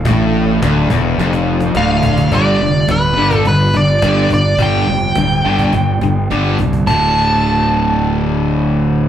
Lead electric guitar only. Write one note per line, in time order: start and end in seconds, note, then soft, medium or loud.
1.77 2.34 F5 loud
2.34 2.91 D5 medium
2.91 3.36 B4 medium
3.36 3.47 A4 medium
3.48 3.76 B4 medium
3.77 4.32 D5 medium
4.34 4.61 D5 medium
4.62 6.28 G5 medium
6.87 9.09 A5 medium